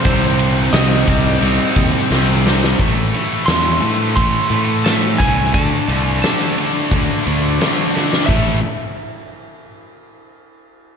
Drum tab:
CC |----------------|----------------|----------------|x---------------|
RD |x-x-x-x-x-x-----|x-x-x-x-x-x-x-x-|x-x-x-x-x-x-x---|----------------|
SD |----o-------o-oo|----o-------o---|----o-------o-oo|----------------|
BD |o-----o---o-----|o-------o-----o-|o-------o-------|o---------------|